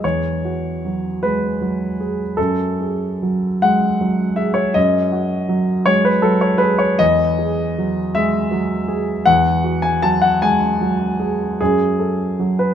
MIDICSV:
0, 0, Header, 1, 2, 480
1, 0, Start_track
1, 0, Key_signature, 4, "major"
1, 0, Tempo, 781250
1, 18, Time_signature, 6, 3, 24, 8
1, 1457, Tempo, 814111
1, 2417, Tempo, 754717
1, 6257, Tempo, 788436
1, 7902, End_track
2, 0, Start_track
2, 0, Title_t, "Grand piano"
2, 0, Program_c, 0, 0
2, 0, Control_c, 0, 64, 127
2, 0, Note_on_c, 0, 68, 38
2, 25, Note_on_c, 0, 73, 72
2, 27, Note_on_c, 0, 40, 45
2, 30, Control_c, 0, 64, 0
2, 124, Control_c, 0, 64, 127
2, 170, Note_off_c, 0, 68, 0
2, 275, Note_on_c, 0, 66, 37
2, 521, Note_on_c, 0, 54, 39
2, 654, Note_off_c, 0, 66, 0
2, 747, Note_off_c, 0, 73, 0
2, 754, Note_on_c, 0, 71, 72
2, 763, Note_on_c, 0, 56, 36
2, 895, Note_off_c, 0, 54, 0
2, 992, Note_off_c, 0, 56, 0
2, 992, Note_on_c, 0, 54, 38
2, 1232, Note_on_c, 0, 68, 40
2, 1366, Note_off_c, 0, 54, 0
2, 1437, Note_off_c, 0, 40, 0
2, 1456, Note_on_c, 0, 69, 72
2, 1462, Note_off_c, 0, 71, 0
2, 1463, Note_off_c, 0, 68, 0
2, 1464, Note_on_c, 0, 42, 50
2, 1468, Control_c, 0, 64, 0
2, 1550, Control_c, 0, 64, 127
2, 1713, Note_on_c, 0, 68, 40
2, 1960, Note_on_c, 0, 54, 41
2, 2102, Note_off_c, 0, 68, 0
2, 2187, Note_off_c, 0, 69, 0
2, 2194, Note_on_c, 0, 78, 85
2, 2195, Note_on_c, 0, 56, 41
2, 2334, Note_off_c, 0, 54, 0
2, 2421, Note_off_c, 0, 56, 0
2, 2423, Note_on_c, 0, 54, 41
2, 2647, Note_on_c, 0, 76, 72
2, 2654, Note_on_c, 0, 68, 44
2, 2664, Note_off_c, 0, 78, 0
2, 2759, Note_on_c, 0, 73, 72
2, 2775, Note_off_c, 0, 76, 0
2, 2809, Note_off_c, 0, 54, 0
2, 2881, Note_off_c, 0, 42, 0
2, 2890, Note_on_c, 0, 75, 82
2, 2891, Note_off_c, 0, 73, 0
2, 2896, Note_on_c, 0, 42, 58
2, 2913, Control_c, 0, 64, 0
2, 3027, Control_c, 0, 64, 127
2, 3044, Note_off_c, 0, 68, 0
2, 3130, Note_on_c, 0, 66, 47
2, 3362, Note_on_c, 0, 54, 46
2, 3516, Note_off_c, 0, 66, 0
2, 3597, Note_on_c, 0, 73, 92
2, 3601, Note_on_c, 0, 56, 44
2, 3610, Note_off_c, 0, 75, 0
2, 3628, Control_c, 0, 64, 0
2, 3719, Note_on_c, 0, 71, 74
2, 3725, Note_off_c, 0, 73, 0
2, 3742, Control_c, 0, 64, 127
2, 3749, Note_off_c, 0, 54, 0
2, 3830, Note_on_c, 0, 69, 76
2, 3841, Note_on_c, 0, 54, 48
2, 3845, Note_off_c, 0, 56, 0
2, 3845, Note_off_c, 0, 71, 0
2, 3951, Note_on_c, 0, 73, 72
2, 3960, Note_off_c, 0, 69, 0
2, 4058, Note_on_c, 0, 71, 81
2, 4073, Note_on_c, 0, 68, 45
2, 4080, Note_off_c, 0, 73, 0
2, 4189, Note_on_c, 0, 73, 74
2, 4194, Note_off_c, 0, 71, 0
2, 4228, Note_off_c, 0, 54, 0
2, 4301, Note_off_c, 0, 42, 0
2, 4317, Note_on_c, 0, 75, 98
2, 4319, Note_off_c, 0, 73, 0
2, 4321, Note_off_c, 0, 68, 0
2, 4323, Note_on_c, 0, 40, 59
2, 4342, Control_c, 0, 64, 0
2, 4451, Control_c, 0, 64, 127
2, 4571, Note_on_c, 0, 68, 48
2, 4824, Note_on_c, 0, 54, 48
2, 4955, Note_off_c, 0, 68, 0
2, 5045, Note_off_c, 0, 75, 0
2, 5055, Note_on_c, 0, 76, 88
2, 5061, Note_on_c, 0, 56, 47
2, 5201, Note_off_c, 0, 54, 0
2, 5286, Note_on_c, 0, 54, 51
2, 5295, Note_off_c, 0, 56, 0
2, 5523, Note_on_c, 0, 68, 50
2, 5672, Note_off_c, 0, 54, 0
2, 5741, Note_off_c, 0, 40, 0
2, 5759, Note_on_c, 0, 78, 94
2, 5767, Note_on_c, 0, 40, 64
2, 5771, Note_off_c, 0, 76, 0
2, 5781, Control_c, 0, 64, 0
2, 5870, Control_c, 0, 64, 127
2, 5911, Note_off_c, 0, 68, 0
2, 6006, Note_on_c, 0, 66, 46
2, 6120, Note_on_c, 0, 80, 83
2, 6128, Note_off_c, 0, 78, 0
2, 6249, Note_off_c, 0, 80, 0
2, 6249, Note_on_c, 0, 81, 88
2, 6251, Note_on_c, 0, 54, 48
2, 6366, Note_on_c, 0, 78, 84
2, 6371, Note_off_c, 0, 81, 0
2, 6395, Note_off_c, 0, 66, 0
2, 6488, Note_off_c, 0, 78, 0
2, 6488, Note_on_c, 0, 56, 43
2, 6491, Note_on_c, 0, 80, 94
2, 6633, Note_off_c, 0, 54, 0
2, 6729, Note_off_c, 0, 56, 0
2, 6730, Note_on_c, 0, 54, 48
2, 6963, Note_on_c, 0, 68, 46
2, 7112, Note_off_c, 0, 54, 0
2, 7182, Note_off_c, 0, 40, 0
2, 7203, Note_off_c, 0, 68, 0
2, 7207, Note_off_c, 0, 80, 0
2, 7212, Note_on_c, 0, 68, 80
2, 7218, Note_on_c, 0, 42, 59
2, 7220, Control_c, 0, 64, 0
2, 7304, Control_c, 0, 64, 127
2, 7448, Note_on_c, 0, 69, 42
2, 7691, Note_on_c, 0, 54, 43
2, 7811, Note_on_c, 0, 71, 68
2, 7814, Note_off_c, 0, 68, 0
2, 7837, Note_off_c, 0, 69, 0
2, 7902, Note_off_c, 0, 42, 0
2, 7902, Note_off_c, 0, 54, 0
2, 7902, Note_off_c, 0, 71, 0
2, 7902, End_track
0, 0, End_of_file